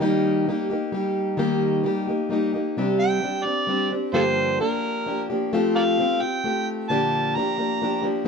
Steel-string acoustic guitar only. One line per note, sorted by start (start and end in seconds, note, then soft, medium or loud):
0.00 0.47 D#3 medium
0.00 0.46 G3 medium
0.00 0.47 A#3 medium
0.00 0.48 D#4 medium
0.00 0.50 G4 medium
0.47 0.70 G3 medium
0.47 0.71 A#3 medium
0.47 0.70 D#4 medium
0.47 0.69 G4 medium
0.70 0.93 A#3 soft
0.70 0.93 D#4 medium
0.70 0.93 G4 medium
0.92 1.37 G3 medium
0.92 1.38 A#3 medium
0.92 1.38 D#4 medium
0.92 1.39 G4 medium
1.37 1.84 D#3 medium
1.37 1.82 G3 medium
1.37 1.83 A#3 medium
1.37 1.84 D#4 medium
1.37 1.85 G4 loud
1.84 2.07 G3 medium
1.84 2.07 A#3 medium
1.84 2.08 D#4 medium
1.84 2.06 G4 medium
2.08 2.29 A#3 soft
2.08 2.31 D#4 soft
2.08 2.30 G4 medium
2.30 2.53 G3 medium
2.30 2.53 A#3 medium
2.30 2.53 D#4 medium
2.30 2.52 G4 medium
2.53 2.78 A#3 soft
2.53 2.77 D#4 soft
2.53 2.76 G4 soft
2.77 3.23 C3 medium
2.77 3.21 G3 medium
2.77 3.22 C4 medium
2.77 3.24 D4 medium
2.77 3.24 G4 medium
3.21 3.45 G3 medium
3.21 3.45 C4 medium
3.21 3.44 D4 medium
3.21 3.43 G4 medium
3.44 3.67 C4 soft
3.44 3.68 D4 soft
3.44 3.67 G4 soft
3.67 3.90 G3 medium
3.67 3.91 C4 medium
3.67 3.92 D4 medium
3.67 3.89 G4 medium
3.91 4.14 C4 soft
3.91 4.13 D4 soft
3.91 4.14 G4 medium
4.13 4.59 G2 medium
4.13 4.60 D3 medium
4.13 4.60 F3 medium
4.13 4.59 A#3 medium
4.13 4.60 D4 medium
4.13 4.62 G4 medium
4.60 5.06 F3 medium
4.60 5.06 A#3 medium
4.60 5.06 D4 medium
4.60 5.08 G4 medium
5.06 5.29 F3 medium
5.06 5.29 A#3 medium
5.06 5.29 D4 medium
5.06 5.29 G4 medium
5.30 5.52 F3 soft
5.30 5.53 A#3 soft
5.30 5.53 D4 medium
5.30 5.52 G4 soft
5.53 6.04 F3 medium
5.53 5.98 A3 medium
5.53 5.98 C4 medium
5.53 6.00 F4 medium
5.53 6.01 G4 loud
5.99 6.21 A3 medium
5.99 6.21 C4 medium
5.99 6.22 F4 medium
5.99 6.20 G4 medium
6.21 6.44 C4 soft
6.21 6.44 F4 soft
6.21 6.44 G4 soft
6.44 6.90 A3 medium
6.44 6.90 C4 medium
6.44 6.90 F4 medium
6.44 6.91 G4 medium
6.90 7.36 A#2 medium
6.90 7.35 D3 medium
6.90 7.35 F3 medium
6.90 7.36 A#3 medium
6.90 7.37 D4 medium
6.90 7.39 G4 medium
7.36 7.59 F3 medium
7.36 7.58 A#3 medium
7.36 7.57 D4 medium
7.36 7.57 G4 medium
7.58 7.80 F3 soft
7.58 7.82 A#3 soft
7.58 7.81 D4 soft
7.58 7.81 G4 soft
7.82 8.03 F3 medium
7.82 8.03 A#3 medium
7.82 8.02 D4 medium
7.82 8.01 G4 medium
8.02 8.25 F3 soft
8.02 8.25 A#3 soft
8.02 8.25 D4 soft
8.02 8.25 G4 medium
8.25 8.28 C3 medium